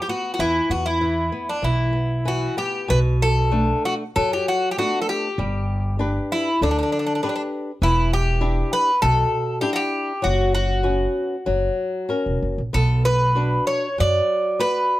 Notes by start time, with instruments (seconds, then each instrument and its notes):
0.02 bouzouki G4
0.09 nylon-string guitar B3, bouzouki F#4
0.34 bouzouki F#4
0.39 upright bass E2, nylon-string guitar E3, bouzouki E4
0.70 upright bass E2, nylon-string guitar B3, bouzouki F#4
0.86 bouzouki E4
1.01 nylon-string guitar E3
1.32 nylon-string guitar B3
1.49 bouzouki D4
1.62 upright bass B1, nylon-string guitar E3, bouzouki E4
1.93 nylon-string guitar B3
2.25 nylon-string guitar E3, bouzouki F#4
2.57 nylon-string guitar B3, bouzouki G4
2.88 upright bass B1, nylon-string guitar B2, bouzouki B4
3.22 bouzouki A4
3.51 nylon-string guitar A3 B3 D4
3.85 bouzouki F#4
4.16 upright bass F#2, nylon-string guitar F#3, bouzouki A4
4.33 bouzouki G4
4.48 bouzouki F#4
4.71 bouzouki G4
4.78 nylon-string guitar A3 B3 D4, bouzouki F#4
5.02 bouzouki A4
5.09 bouzouki G4
5.38 upright bass G1, nylon-string guitar G3
5.99 nylon-string guitar D4 G4 B4
6.32 bouzouki E4
6.61 upright bass D2, nylon-string guitar D3, bouzouki D4
6.71 bouzouki D4
6.79 bouzouki D4
6.83 bouzouki D4
6.92 bouzouki D4
6.99 bouzouki D4
7.06 bouzouki D4
7.15 bouzouki D4
7.23 bouzouki D4, nylon-string guitar D4 G4 B4
7.29 bouzouki D4
7.36 bouzouki D4
7.82 upright bass E1, nylon-string guitar E3, bouzouki E4
8.13 bouzouki G4
8.41 nylon-string guitar D4 E4 G4
8.73 bouzouki B4
9.02 upright bass B1, nylon-string guitar B2, bouzouki A4
9.61 nylon-string guitar D4 E4 G4, bouzouki G4
9.73 bouzouki F#4 G4
10.22 upright bass F#1, nylon-string guitar F#3, bouzouki F#4
10.55 bouzouki F#4
10.83 nylon-string guitar B3 C#4 F#4
11.46 upright bass F#1, nylon-string guitar F#3
12.09 nylon-string guitar C#4 F#4 A#4
12.26 upright bass E1
12.42 upright bass F#1
12.58 upright bass A#1
12.73 upright bass B1, nylon-string guitar B3, bouzouki A4
13.05 bouzouki B4
13.35 nylon-string guitar D4 F#4 B4
13.67 bouzouki C#5
13.98 upright bass F#2, nylon-string guitar F#3, bouzouki D5
14.59 nylon-string guitar F#4 B4 D5, bouzouki B4